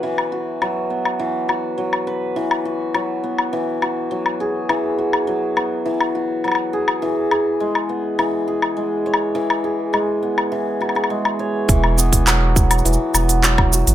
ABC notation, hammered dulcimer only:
X:1
M:4/4
L:1/16
Q:1/4=103
K:E
V:1 name="Hammered dulcimer"
[E,F,B,FB]2 F2 F,2 B,2 E,2 F2 F,2 B2 | E,2 F2 F,2 B,2 E,2 F2 F,2 G2 | E,2 F2 F,2 B,2 E,2 F2 F,2 G2 | E,2 G2 G,2 B,2 E,2 G2 G,2 c2 |
E,2 G2 G,2 B,2 E,2 F G G,2 c2 | E,2 B,2 F,2 F2 E,2 B,2 F,2 F2 |]